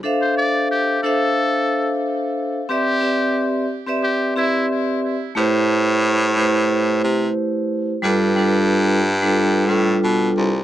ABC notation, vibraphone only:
X:1
M:4/4
L:1/16
Q:"Swing 16ths" 1/4=90
K:Am
V:1 name="Vibraphone"
[DAcef]6 [DAcef]8- [DAcef] z | [CGBde]2 [CGBde]4 z [CGBde]3 [CGBde]4- [CGBde] z | [A,EGBc]6 [A,EGBc]8- [A,EGBc] z | [G,DFAB]2 [G,DFAB]4 z [G,DFAB]3 [G,DFAB]4- [G,DFAB] z |]